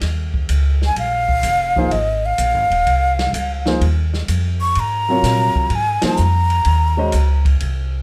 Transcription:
0.01 D#2, snare, ride
0.34 kick
0.49 C#2, hi-hat pedal, ride
0.82 snare
0.86 G#5
0.96 A#1 F5, ride
1.28 kick
1.43 F1, hi-hat pedal, ride
1.76 F3 A#3 D#4 G#4 C5, kick
1.91 G#1 D#5, ride
2.26 F5
2.38 A#1, hi-hat pedal, ride
2.54 G#1
2.70 D#1, ride
2.86 C2, ride
3.19 snare, ride
3.33 C#2, hi-hat pedal, ride
3.66 F3 A#3 D#4 G#4 C5, snare
3.81 D#2, ride
4.14 snare
4.28 F2, hi-hat pedal, ride
4.61 C#6
4.75 G#2, ride
4.80 A#5
5.09 C3 F#3 F4 A#4 C#5
5.23 A#2, snare, hi-hat pedal, ride
5.55 muted upright bass stroke, kick
5.70 G#2, ride
5.75 G#5
6.02 F3 A#3 D#4 G#4 C5, muted upright bass stroke, snare, ride
6.06 A#5
6.17 F2, hi-hat pedal
6.50 ride
6.65 D#2, ride
6.97 G#3 C#4 F#4 C5 D#5
7.12 C#2, hi-hat pedal, ride
7.45 kick, ride
7.60 C2, ride

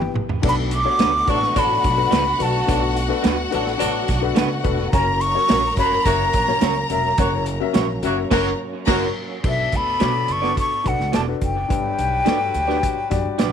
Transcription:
Already playing: B3 E4 G4 B4 G5
0.02 high tom
0.14 A1, mid tom
0.29 floor tom
0.42 B1 B2 F#3 A3 B3 D4 F#4 A4 B4 F#5, kick, crash
0.49 B5
0.71 D6, closed hi-hat
0.84 D4 F#4 A4 C#5
0.99 D2 A3 D4 F#4 B4, snare, closed hi-hat
1.26 A1 F#3 D4 F#4 A4 B4 C#6, kick, closed hi-hat
1.43 snare
1.54 A1 F#3 D4 F#4 A4 B4, kick, closed hi-hat
1.58 B5
1.84 B1, kick, closed hi-hat
1.97 D4 F#4 A4 B4
2.11 C#2 A3 D4 F#4 B4, snare, closed hi-hat
2.38 B1 D4 F#4 A4 B4, closed hi-hat
2.42 A5
2.67 B1 B2 F#3 D4 F#4 A4 B4, kick, closed hi-hat
2.97 closed hi-hat
3.08 D4 F#4 A4 B4
3.23 D2 A3 D4 F#4 B4, snare, closed hi-hat
3.51 A1 F#3 D4 F#4 A4 B4, closed hi-hat
3.67 snare
3.77 F#3 D4 F#4 A4 B4, closed hi-hat
3.82 A1
4.08 B1, kick, snare, closed hi-hat
4.21 D4 F#4 A4 B4
4.35 C#2 A3 D4 F#4 B4, snare, closed hi-hat
4.63 E1 D4 F#4 A4 B4, kick, closed hi-hat
4.92 F#1 F#3 A#3 C#4 F#4 A#4 C#5 A#5, kick, closed hi-hat
5.21 C#6, closed hi-hat
5.34 C#4 F#4 A#4 C#5
5.49 A#1 C#4 F#4 A#4 C#5, snare, closed hi-hat
5.77 F#1 A#3 C#4 F#4 A#4 C#5 B5, kick, closed hi-hat
5.92 snare
6.05 F#1 A#3 C#4 F#4 A#4 C#5 E5 A#5, kick, closed hi-hat
6.33 A#1, kick, closed hi-hat
6.47 C#4 F#4 A#4 C#5, snare
6.61 C#2 C#4 F#4 A#4 C#5, snare, closed hi-hat
6.89 E1 C#4 F#4 A#4 E5 A#5, closed hi-hat
7.18 F#1 A#3 C#4 F#4 A#4 C#5, kick, closed hi-hat
7.46 closed hi-hat
7.60 C#4 F#4 A#4 E5
7.73 A#1 C#4 F#4 A#4 C#5, snare, closed hi-hat
8.02 F#1 A#3 C#4 F#4 A#4 C#5 E5, closed hi-hat
8.30 F#1 A#3 C#4 F#4 A#4 C#5 A#5, kick, snare, crash
8.87 F#1 A#3 C#4 F#4 A#4 C#5 A#5, kick, snare, crash
9.43 B1 B2 B3 D4 F#4 A4 B4 D5, kick, crash
9.48 E5
9.72 D2 B5, kick, closed hi-hat
10.00 B2 B3 D4 F#4 A4 C#5 D5, snare, closed hi-hat
10.28 F#1 C#6, closed hi-hat
10.42 B3 D4 F#4 A4 B4 D5, snare
10.57 C#6, kick, closed hi-hat
10.84 B1 D4 F#4 A4 B4 F#5, kick, closed hi-hat
10.99 C#2, snare
11.12 E1 B3 F#4 A4 D5 A5, snare, closed hi-hat
11.27 D4 F#4 A4 B4
11.41 F#1 G5, kick, closed hi-hat
11.68 G1 G2 F#3 G3 D4 B4, kick, closed hi-hat
11.99 B1, closed hi-hat
12.25 G2 D4 F#4 G4 A4 B4 D5, snare, closed hi-hat
12.54 D2, closed hi-hat
12.68 D4 F#4 G4 B4 D5, snare
12.83 kick, closed hi-hat
13.10 F#2 D4 F#4 G4 D5, kick, snare, closed hi-hat
13.25 G2
13.38 B1 D4 F#4 B4 D5, snare, closed hi-hat

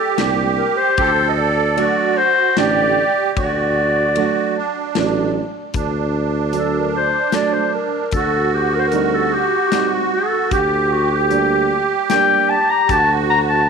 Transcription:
Already playing: G4 A4
0.17 C2 G3 A#3 D4, snare, ride
0.58 A#4
0.77 C5
0.97 D2 A4, kick, ride
1.29 D#5
1.37 D5
1.76 F#3 A3 D4 F#4 D5, ride
2.18 C5
2.56 A1 D3 A3 D4 G4 D5, snare, ride
3.37 D2 F#4 D5, kick, ride
4.16 F#3 A3 D4 F#4, ride
4.57 D4
4.95 A1 F#3 A3 D4, snare, ride
5.74 D2 D4, kick, closed hi-hat
6.53 F#3 A3 D4, closed hi-hat
6.57 A4
6.78 A#4
6.97 C5
7.32 F#3 A3 D4 D5, snare, closed hi-hat
7.53 C5
7.74 A#4
8.12 D2 A4, kick, closed hi-hat
8.16 F#4
8.54 G4
8.74 A#4
8.79 C5
8.87 A#4
8.92 G3 C4 D#4, closed hi-hat
9.14 A4
9.34 G4
9.72 G3 C4 D#4, snare, closed hi-hat
9.93 F#4
10.13 A4
10.51 D2 G4, kick, closed hi-hat
10.92 F#4
11.11 G4
11.30 G3 A#3 D4, closed hi-hat
12.10 G3 A#3 D4 G5, snare, closed hi-hat
12.50 A5
12.70 A#5
12.89 D2 F#4 A5, kick, closed hi-hat
13.30 A#5
13.49 A5

